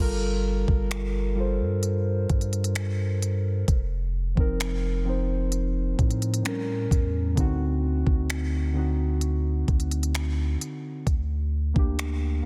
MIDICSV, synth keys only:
0, 0, Header, 1, 2, 480
1, 0, Start_track
1, 0, Key_signature, -2, "minor"
1, 0, Tempo, 923077
1, 1915, Time_signature, 4, 2, 24, 8
1, 6477, End_track
2, 0, Start_track
2, 0, Title_t, "Synth keys"
2, 0, Program_c, 0, 88
2, 0, Control_c, 0, 64, 127
2, 0, Control_c, 0, 64, 0
2, 0, Note_on_c, 0, 55, 101
2, 0, Note_on_c, 0, 65, 97
2, 0, Note_on_c, 0, 69, 88
2, 7, Note_on_c, 0, 70, 110
2, 89, Control_c, 0, 64, 127
2, 520, Note_off_c, 0, 55, 0
2, 524, Note_off_c, 0, 65, 0
2, 528, Note_off_c, 0, 69, 0
2, 532, Note_off_c, 0, 70, 0
2, 703, Note_on_c, 0, 55, 85
2, 711, Note_on_c, 0, 65, 76
2, 719, Note_on_c, 0, 69, 75
2, 728, Note_on_c, 0, 72, 95
2, 1417, Note_off_c, 0, 55, 0
2, 1422, Note_off_c, 0, 65, 0
2, 1426, Note_off_c, 0, 69, 0
2, 1430, Note_off_c, 0, 72, 0
2, 1921, Control_c, 0, 64, 0
2, 2006, Control_c, 0, 64, 127
2, 2263, Note_on_c, 0, 53, 77
2, 2271, Note_on_c, 0, 60, 72
2, 2280, Note_on_c, 0, 63, 70
2, 2288, Note_on_c, 0, 70, 85
2, 2534, Note_off_c, 0, 53, 0
2, 2539, Note_off_c, 0, 60, 0
2, 2543, Note_off_c, 0, 63, 0
2, 2547, Note_off_c, 0, 70, 0
2, 2622, Note_on_c, 0, 53, 80
2, 2630, Note_on_c, 0, 60, 75
2, 2639, Note_on_c, 0, 63, 74
2, 2647, Note_on_c, 0, 72, 91
2, 3337, Note_off_c, 0, 53, 0
2, 3340, Note_on_c, 0, 45, 87
2, 3341, Note_off_c, 0, 60, 0
2, 3345, Note_off_c, 0, 63, 0
2, 3350, Note_off_c, 0, 72, 0
2, 3350, Note_on_c, 0, 55, 78
2, 3359, Note_on_c, 0, 61, 84
2, 3361, Control_c, 0, 64, 0
2, 3367, Note_on_c, 0, 70, 96
2, 3456, Control_c, 0, 64, 127
2, 3731, Note_off_c, 0, 45, 0
2, 3736, Note_off_c, 0, 55, 0
2, 3741, Note_off_c, 0, 61, 0
2, 3745, Note_off_c, 0, 70, 0
2, 3822, Note_on_c, 0, 50, 97
2, 3831, Note_on_c, 0, 60, 96
2, 3839, Note_on_c, 0, 63, 97
2, 3842, Control_c, 0, 64, 0
2, 3847, Note_on_c, 0, 66, 114
2, 3934, Control_c, 0, 64, 127
2, 4360, Note_off_c, 0, 50, 0
2, 4364, Note_off_c, 0, 60, 0
2, 4368, Note_off_c, 0, 63, 0
2, 4372, Note_off_c, 0, 66, 0
2, 4542, Note_on_c, 0, 50, 84
2, 4551, Note_on_c, 0, 60, 73
2, 4560, Note_on_c, 0, 63, 78
2, 4568, Note_on_c, 0, 66, 96
2, 5257, Note_off_c, 0, 50, 0
2, 5262, Note_off_c, 0, 60, 0
2, 5266, Note_off_c, 0, 63, 0
2, 5270, Note_off_c, 0, 66, 0
2, 5762, Control_c, 0, 64, 0
2, 5849, Control_c, 0, 64, 127
2, 6103, Note_on_c, 0, 58, 78
2, 6115, Note_on_c, 0, 62, 70
2, 6129, Note_on_c, 0, 67, 89
2, 6375, Note_off_c, 0, 58, 0
2, 6381, Note_off_c, 0, 62, 0
2, 6387, Note_off_c, 0, 67, 0
2, 6477, End_track
0, 0, End_of_file